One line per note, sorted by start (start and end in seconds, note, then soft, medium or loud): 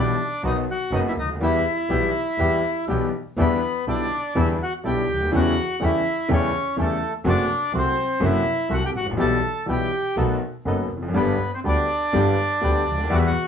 0.00 0.16 B1 medium
0.00 0.16 B2 medium
0.00 0.16 E3 medium
0.00 0.16 G3 medium
0.00 0.16 B3 medium
0.00 0.42 D4 medium
0.00 0.16 E4 medium
0.00 0.16 G4 medium
0.00 0.17 G4 medium
0.00 0.42 D5 medium
0.43 0.64 B1 medium
0.43 0.64 B2 medium
0.43 0.64 D#3 medium
0.43 0.64 F#3 medium
0.43 0.64 B3 medium
0.43 0.64 D#4 medium
0.43 0.57 D#4 medium
0.43 0.64 F#4 medium
0.43 0.57 D#5 medium
0.71 0.92 F#4 medium
0.71 0.94 F#5 medium
0.91 1.12 F#1 medium
0.91 1.13 F#2 medium
0.91 1.12 D#3 medium
0.91 1.13 F#3 medium
0.91 1.12 B3 medium
0.91 1.13 B3 medium
0.91 1.13 D#4 medium
0.91 1.13 F#4 medium
0.91 1.00 D#5 medium
0.95 1.00 D#4 medium
1.08 1.13 E4 medium
1.08 1.13 E5 medium
1.16 1.39 D2 soft
1.16 1.30 D#4 medium
1.16 1.29 D#5 medium
1.23 1.29 C#2 soft
1.29 1.35 D2 soft
1.35 1.41 D#2 medium
1.40 1.61 E2 medium
1.40 1.61 E3 medium
1.40 1.61 G3 medium
1.40 1.61 B3 soft
1.40 1.61 B3 medium
1.40 1.61 E4 medium
1.40 2.85 E4 medium
1.40 1.61 G4 medium
1.40 1.62 G4 medium
1.40 2.85 E5 medium
1.89 2.10 B1 medium
1.89 2.10 B2 medium
1.89 2.10 E3 medium
1.89 2.10 G3 soft
1.89 2.10 B3 medium
1.89 2.10 E4 medium
1.89 2.10 G4 medium
2.38 2.59 E2 medium
2.38 2.60 E2 medium
2.38 2.60 E3 medium
2.38 2.60 G3 medium
2.38 2.60 B3 medium
2.38 2.60 B3 soft
2.38 2.60 E4 medium
2.38 2.60 G4 medium
2.88 3.09 B1 medium
2.88 3.09 B2 medium
2.88 3.09 E3 medium
2.88 3.09 G3 soft
2.88 3.09 B3 soft
2.88 3.10 B3 medium
2.88 3.09 E4 medium
2.88 3.09 G4 medium
2.88 3.10 G4 medium
3.37 3.58 E2 medium
3.37 3.59 E2 medium
3.37 3.58 D3 medium
3.37 3.59 E3 medium
3.37 3.58 G3 medium
3.37 3.59 B3 medium
3.37 3.85 B3 medium
3.37 3.59 D4 medium
3.37 3.59 E4 medium
3.37 3.59 G4 medium
3.41 3.85 B4 medium
3.86 4.07 B1 medium
3.86 4.08 B1 soft
3.86 4.08 B2 soft
3.86 4.08 D3 soft
3.86 4.08 G3 soft
3.86 4.08 B3 soft
3.86 4.08 D4 soft
3.86 4.34 D4 medium
3.86 4.08 E4 soft
3.86 4.08 G4 soft
3.86 4.39 D5 medium
4.35 4.56 E2 medium
4.35 4.56 D3 medium
4.35 4.56 E3 medium
4.35 4.56 G3 medium
4.35 4.56 B3 medium
4.35 4.56 D4 medium
4.35 4.56 E4 medium
4.35 4.49 E4 medium
4.35 4.56 G4 medium
4.35 4.49 E5 medium
4.63 4.73 F#4 medium
4.63 4.73 F#5 medium
4.84 5.05 B1 soft
4.84 5.05 B1 medium
4.84 5.04 B2 medium
4.84 5.04 D3 soft
4.84 5.04 G3 soft
4.84 5.04 B3 soft
4.84 5.05 D4 soft
4.84 5.04 E4 soft
4.84 5.05 E4 soft
4.84 5.05 G4 soft
4.84 5.31 G4 medium
4.84 5.31 G5 medium
5.09 5.32 D2 soft
5.14 5.20 C#2 soft
5.20 5.27 D2 medium
5.26 5.32 D#2 medium
5.31 5.53 E2 medium
5.31 5.52 C#3 medium
5.31 5.53 E3 medium
5.31 5.52 G3 medium
5.31 5.53 A3 medium
5.31 5.53 C#4 medium
5.31 5.53 E4 medium
5.31 5.53 G4 medium
5.36 5.80 F#4 medium
5.36 5.84 F#5 medium
5.80 6.01 E2 soft
5.80 6.01 E2 medium
5.80 6.01 C#3 soft
5.80 6.01 E3 medium
5.80 6.01 G3 soft
5.80 6.01 A3 soft
5.80 6.02 A3 soft
5.80 6.02 C#4 soft
5.80 6.01 E4 soft
5.80 6.02 G4 soft
5.84 6.28 E4 medium
5.84 6.28 E5 medium
6.28 6.49 E2 medium
6.28 6.50 E2 medium
6.28 6.49 C#3 medium
6.28 6.50 E3 medium
6.28 6.50 G3 medium
6.28 6.50 A3 medium
6.28 6.50 C#4 medium
6.28 6.50 E4 medium
6.28 6.50 G4 medium
6.33 6.76 C#4 medium
6.33 6.76 C#5 medium
6.76 6.97 E2 medium
6.76 6.98 E2 medium
6.76 6.97 C#3 soft
6.76 6.97 E3 medium
6.76 6.97 G3 soft
6.76 6.97 A3 soft
6.76 6.98 A3 soft
6.76 6.98 C#4 soft
6.76 6.98 E4 soft
6.76 6.98 G4 medium
6.80 7.13 A3 medium
6.80 7.13 A4 medium
7.24 7.46 F#1 medium
7.24 7.46 F#2 medium
7.24 7.45 C3 medium
7.24 7.46 F#3 medium
7.24 7.45 A3 medium
7.24 7.46 A3 medium
7.24 7.46 C4 medium
7.24 7.46 F#4 medium
7.29 7.72 D4 medium
7.29 7.72 D5 medium
7.73 7.93 C2 medium
7.73 7.93 C2 soft
7.73 7.93 C3 medium
7.73 7.93 F#3 soft
7.73 7.93 A3 soft
7.73 7.94 A3 soft
7.73 7.94 C4 soft
7.73 7.94 F#4 soft
7.73 7.94 F#4 medium
7.77 8.20 C4 medium
7.77 8.25 C5 medium
8.20 8.42 F#1 medium
8.20 8.41 F#2 medium
8.20 8.41 C3 medium
8.20 8.41 F#3 medium
8.20 8.42 A3 medium
8.20 8.42 C4 medium
8.20 8.42 F#4 medium
8.24 8.69 E4 medium
8.24 8.73 E5 medium
8.69 8.90 C2 medium
8.69 8.91 C2 medium
8.69 8.91 C3 medium
8.69 8.91 F#3 soft
8.69 8.90 A3 soft
8.69 8.91 A3 soft
8.69 8.91 C4 soft
8.69 8.91 F#4 soft
8.69 8.91 F#4 medium
8.73 8.83 F#4 medium
8.73 8.85 F#5 medium
8.85 8.90 G4 medium
8.85 8.91 G5 medium
8.94 9.18 A1 soft
8.94 9.07 F#4 medium
8.94 9.07 F#5 medium
9.00 9.07 G#1 soft
9.06 9.13 A1 medium
9.11 9.18 A#1 medium
9.17 9.39 B1 medium
9.17 9.40 B1 medium
9.17 9.39 B2 medium
9.17 9.39 E3 medium
9.17 9.39 G3 medium
9.17 9.39 B3 medium
9.17 9.39 E4 medium
9.17 9.39 G4 medium
9.17 9.40 G4 medium
9.17 9.66 A5 medium
9.21 9.66 A4 medium
9.66 9.88 B1 medium
9.66 9.89 B1 medium
9.66 9.88 B2 soft
9.66 9.88 E3 soft
9.66 9.88 G3 soft
9.66 9.88 B3 soft
9.66 9.89 B3 soft
9.66 9.89 E4 soft
9.66 9.88 G4 soft
9.66 9.89 G4 medium
9.71 10.16 G4 medium
9.71 10.16 G5 medium
10.16 10.38 B1 medium
10.16 10.38 B2 medium
10.16 10.38 D#3 medium
10.16 10.38 A3 medium
10.16 10.38 B3 medium
10.16 10.38 D#4 medium
10.16 10.38 F#4 medium
10.16 10.38 A4 medium
10.65 10.87 F#1 soft
10.65 10.87 F#1 medium
10.65 10.87 F#2 soft
10.65 10.86 D#3 soft
10.65 10.87 A3 soft
10.65 10.87 B3 soft
10.65 10.87 D#4 soft
10.65 10.87 F#4 soft
10.65 10.87 A4 medium
10.90 11.15 F1 soft
10.97 11.03 E2 soft
11.02 11.09 F2 medium
11.08 11.15 F#2 medium
11.14 11.36 G1 medium
11.14 11.36 G2 medium
11.14 11.36 D3 medium
11.14 11.36 G3 medium
11.14 11.36 B3 medium
11.14 11.36 D4 medium
11.14 11.36 G4 medium
11.14 11.51 B4 medium
11.18 11.51 B3 medium
11.54 11.60 C4 medium
11.54 11.59 C5 medium
11.64 11.85 D2 soft
11.64 11.86 D2 medium
11.64 11.85 D3 soft
11.64 11.85 G3 soft
11.64 11.85 B3 soft
11.64 11.85 D4 soft
11.64 11.86 G4 soft
11.64 13.16 D5 medium
11.69 13.08 D4 medium
12.13 12.34 G1 medium
12.13 12.34 G2 medium
12.13 12.34 D3 medium
12.13 12.34 G3 medium
12.13 12.34 B3 medium
12.13 12.35 D4 medium
12.13 12.34 G4 medium
12.13 12.35 G4 medium
12.61 12.82 D2 medium
12.61 12.83 D2 medium
12.61 12.82 D3 medium
12.61 12.82 G3 soft
12.61 12.82 B3 soft
12.61 12.83 B3 soft
12.61 12.83 D4 soft
12.61 12.82 G4 medium
12.61 12.83 G4 medium
12.86 13.10 D2 soft
12.92 12.98 C#2 soft
12.98 13.04 D2 medium
13.04 13.10 D#2 medium
13.10 13.31 E2 medium
13.10 13.31 E3 medium
13.10 13.30 G3 medium
13.10 13.31 G3 medium
13.10 13.31 B3 medium
13.10 13.31 E4 medium
13.10 13.31 F#4 medium
13.14 13.19 F#4 medium
13.14 13.19 F#5 medium
13.19 13.25 E5 medium
13.27 13.47 F#4 medium
13.27 13.47 F#5 medium